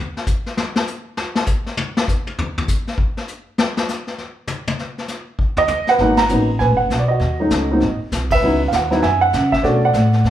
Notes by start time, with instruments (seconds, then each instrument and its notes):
0.17 snare
0.26 kick, hi-hat pedal
0.46 snare
0.57 snare
0.76 snare
0.87 hi-hat pedal
1.17 snare
1.35 snare
1.46 kick, hi-hat pedal
1.66 snare
1.77 high tom
1.97 snare
2.08 kick, hi-hat pedal
2.27 high tom
2.38 floor tom
2.58 floor tom
2.68 kick, hi-hat pedal
2.87 snare
2.98 kick
3.17 snare
3.28 hi-hat pedal
3.58 snare
3.77 snare
3.88 snare, hi-hat pedal
4.07 snare
4.18 snare
4.47 hi-hat pedal, high tom
4.67 high tom
4.79 snare
4.98 snare
5.08 snare, hi-hat pedal
5.39 kick
5.57 upright piano D#5, floor tom
5.68 floor tom, hi-hat pedal
5.87 upright piano B4 F#5, snare
5.98 upright bass G#1, upright piano F#3 A#3 B3 D#4, brush sweep, kick, snare
6.17 upright piano A#5, snare, ride
6.29 upright bass A1, upright piano F#3 A#3 B3 D#4, hi-hat pedal
6.59 upright bass A#1, upright piano B4 G#5, brush sweep, kick, snare
6.69 upright bass G#1
6.77 upright bass F#1, upright piano F#5
6.90 upright bass B1, kick, snare, hi-hat pedal
6.99 upright piano D5
7.08 upright piano F#4 D#5
7.20 upright bass D#2, brush sweep, kick, snare
7.40 upright piano F#3 A3 C#4 D#4
7.50 upright bass C#2, kick, snare, hi-hat pedal
7.71 upright piano F#3 A#3 C4 D#4
7.80 upright bass G#1, brush sweep, kick, snare
7.99 muted upright bass stroke
8.12 upright bass C2, kick, snare, hi-hat pedal
8.31 upright piano B4 E5, kick, ride
8.41 upright bass C#2, upright piano F#3 B3 D#4 E4, brush sweep
8.68 upright bass D#2, upright piano F5
8.72 upright piano F#5, kick, snare, hi-hat pedal
8.91 upright piano F#3 B3 D#4 E4, snare
9.02 upright bass F#2, upright piano E5 G#5, brush sweep, kick, snare
9.21 upright piano F#5
9.33 upright bass C#3, kick, snare, hi-hat pedal
9.52 upright piano E5, kick, snare
9.63 upright bass B2, upright piano A3 C#4 D4 F#4 A4 D5, brush sweep, snare
9.85 upright piano D5 F#5
9.93 upright bass A2, kick, snare, hi-hat pedal
10.13 snare
10.24 upright bass E2, brush sweep, kick, snare